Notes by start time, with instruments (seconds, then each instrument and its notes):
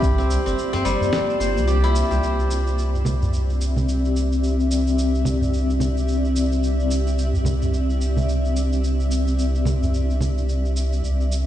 Already playing: guzheng C4 E4 G4 C5, ambient pad D5
0.02 sub bass C2, ambient pad A#3 F4 C5, kick, shaker
0.18 guzheng C4, shaker
0.30 shaker
0.46 sub bass G1, guzheng C4, shaker
0.58 shaker
0.73 guzheng C4, udu, shaker
0.85 sub bass G1, guzheng G3, shaker
1.01 udu, shaker
1.12 guzheng C4, snare, shaker
1.30 shaker
1.40 sub bass G1, guzheng C5, shaker
1.56 sub bass C2, shaker
1.67 guzheng G4, shaker
1.84 guzheng E4, shaker
1.95 shaker
2.11 sub bass C2, guzheng G4, shaker
2.22 sub bass C2, ambient pad C4 G4 D5 E5, shaker
2.39 shaker
2.51 shaker
2.67 shaker
2.78 shaker
2.95 udu, shaker
3.05 low conga, shaker
3.22 udu, shaker
3.33 shaker
3.50 shaker
3.61 shaker
3.76 low conga, shaker
3.88 shaker
4.05 shaker
4.16 shaker
4.32 shaker
4.44 shaker
4.60 shaker
4.71 shaker
4.87 shaker
4.98 shaker
5.15 shaker
5.25 low conga, shaker
5.41 udu, shaker
5.53 shaker
5.70 shaker
5.80 low conga, shaker
5.97 shaker
6.08 shaker
6.25 shaker
6.36 shaker
6.52 shaker
6.63 shaker
6.80 shaker
6.91 shaker
7.07 shaker
7.18 shaker
7.34 udu, shaker
7.45 low conga, shaker
7.62 udu, shaker
7.74 shaker
7.90 shaker
8.01 shaker
8.17 low conga, shaker
8.29 shaker
8.45 shaker
8.56 shaker
8.72 shaker
8.84 shaker
9.00 shaker
9.11 shaker
9.27 shaker
9.39 shaker
9.55 shaker
9.65 low conga, shaker
9.82 udu, shaker
9.94 shaker
10.10 shaker
10.21 low conga, shaker
10.38 shaker
10.49 shaker
10.65 shaker
10.76 shaker
10.93 shaker
11.03 sub bass C2, ambient pad G3 D4 A4 A#4, shaker
11.21 shaker
11.32 shaker